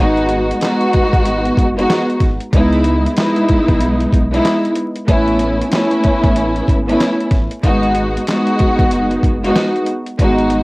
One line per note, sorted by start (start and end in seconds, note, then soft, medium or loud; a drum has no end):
0.00 0.52 G#1 loud
0.00 0.57 G#3 loud
0.00 0.58 B3 medium
0.00 0.58 D#4 loud
0.00 0.59 F#4 loud
0.17 closed hi-hat soft
0.29 closed hi-hat medium
0.51 closed hi-hat medium
0.60 1.65 G#3 loud
0.60 1.66 B3 medium
0.60 1.66 D#4 medium
0.60 1.67 F#4 loud
0.60 snare loud
0.60 clap medium
0.60 closed hi-hat medium
0.81 closed hi-hat soft
0.93 kick medium
0.93 closed hi-hat medium
1.13 1.50 G#1 medium
1.13 kick loud
1.13 closed hi-hat soft
1.25 closed hi-hat loud
1.45 closed hi-hat soft
1.57 1.84 F#1 loud
1.57 kick medium
1.57 closed hi-hat medium
1.76 2.18 G#3 loud
1.76 2.18 B3 medium
1.76 2.19 D#4 medium
1.76 2.19 F#4 loud
1.76 closed hi-hat soft
1.90 snare loud
1.90 clap medium
1.90 closed hi-hat medium
2.10 closed hi-hat soft
2.20 2.38 G#1 loud
2.20 kick loud
2.20 snare soft
2.20 closed hi-hat medium
2.40 closed hi-hat soft
2.53 3.07 C#2 loud
2.53 3.13 G#3 loud
2.53 3.13 B3 medium
2.53 3.14 D#4 medium
2.53 3.14 E4 loud
2.53 kick loud
2.53 closed hi-hat loud
2.73 closed hi-hat soft
2.84 closed hi-hat medium
3.06 closed hi-hat medium
3.16 4.21 G#3 loud
3.16 4.21 B3 medium
3.16 4.22 D#4 medium
3.16 4.22 E4 loud
3.16 snare loud
3.16 clap medium
3.16 closed hi-hat medium
3.36 closed hi-hat soft
3.48 kick medium
3.48 closed hi-hat medium
3.68 4.06 B1 medium
3.68 kick loud
3.68 closed hi-hat soft
3.81 closed hi-hat medium
4.00 closed hi-hat soft
4.13 4.40 B1 medium
4.13 kick medium
4.13 closed hi-hat medium
4.31 4.73 G#3 loud
4.31 4.73 B3 loud
4.31 4.74 D#4 medium
4.31 4.74 E4 loud
4.31 closed hi-hat soft
4.45 snare loud
4.45 clap medium
4.45 closed hi-hat medium
4.65 closed hi-hat soft
4.75 closed hi-hat medium
4.96 closed hi-hat soft
5.07 5.62 A1 loud
5.07 5.67 A3 loud
5.07 5.68 B3 medium
5.07 5.68 C#4 medium
5.07 5.69 E4 loud
5.07 kick loud
5.07 closed hi-hat loud
5.28 closed hi-hat soft
5.39 closed hi-hat medium
5.62 closed hi-hat medium
5.71 6.76 A3 loud
5.71 6.77 B3 medium
5.71 6.77 C#4 loud
5.71 6.78 E4 loud
5.71 snare loud
5.71 clap medium
5.71 closed hi-hat medium
5.91 closed hi-hat soft
6.04 kick medium
6.04 closed hi-hat medium
6.24 6.61 A1 medium
6.24 kick loud
6.24 closed hi-hat soft
6.36 closed hi-hat medium
6.56 closed hi-hat soft
6.68 6.95 G#1 medium
6.68 kick medium
6.68 closed hi-hat medium
6.86 7.28 A3 loud
6.86 7.28 B3 medium
6.86 7.29 C#4 medium
6.86 7.29 E4 loud
6.86 closed hi-hat soft
7.00 snare loud
7.00 clap medium
7.00 closed hi-hat loud
7.20 closed hi-hat soft
7.31 7.48 A1 loud
7.31 kick loud
7.31 snare soft
7.31 closed hi-hat medium
7.51 closed hi-hat soft
7.63 8.17 G#1 loud
7.63 8.23 G#3 loud
7.63 8.24 B3 medium
7.63 8.24 D#4 medium
7.63 8.25 F#4 loud
7.63 kick loud
7.63 closed hi-hat loud
7.83 closed hi-hat soft
7.95 closed hi-hat medium
8.17 closed hi-hat medium
8.27 9.32 G#3 loud
8.27 9.32 B3 medium
8.27 9.33 D#4 medium
8.27 9.33 F#4 loud
8.27 snare loud
8.27 clap medium
8.27 closed hi-hat medium
8.47 closed hi-hat soft
8.59 kick medium
8.59 closed hi-hat medium
8.79 9.16 F#1 medium
8.79 kick loud
8.79 closed hi-hat soft
8.91 closed hi-hat medium
9.11 closed hi-hat soft
9.23 9.50 F#1 medium
9.23 kick medium
9.23 closed hi-hat medium
9.43 9.84 G#3 loud
9.43 9.84 B3 medium
9.43 9.85 D#4 medium
9.43 9.85 F#4 loud
9.43 closed hi-hat soft
9.56 snare loud
9.56 clap medium
9.56 closed hi-hat medium
9.76 closed hi-hat soft
9.86 closed hi-hat medium
10.06 closed hi-hat soft
10.19 10.63 G#1 loud
10.19 10.63 G#3 loud
10.19 10.63 B3 medium
10.19 10.63 D#4 loud
10.19 10.63 F#4 loud
10.19 kick loud
10.19 closed hi-hat loud
10.38 closed hi-hat soft
10.50 closed hi-hat medium